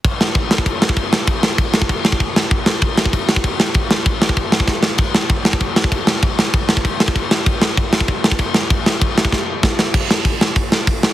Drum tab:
CC |x---x---x---x---|x---x---x---x---|x---x---x---x---|x---x---x-------|
HH |----------------|----------------|----------------|----------------|
SD |--o---o---o---o-|--o---o---o---o-|--o---o---o---o-|--o---o---o-o-o-|
BD |o---o--oo--oo---|o---o--oo--oo---|o---o--oo--oo---|o---o--oo--oo---|

CC |x---x---x---x---|x---x---x---x---|x---x---x---x---|x---x-----------|
HH |----------------|----------------|----------------|----------------|
SD |--o---o---o---o-|--o---o---o---o-|--o---o---o---o-|--o---o-o---o-o-|
BD |o---o--oo--oo---|o---o--oo--oo---|o---o--oo--oo---|o---o--oo---o---|

CC |x---------------|
HH |----o---o---o---|
SD |--o---o---o---o-|
BD |o---o---o---o---|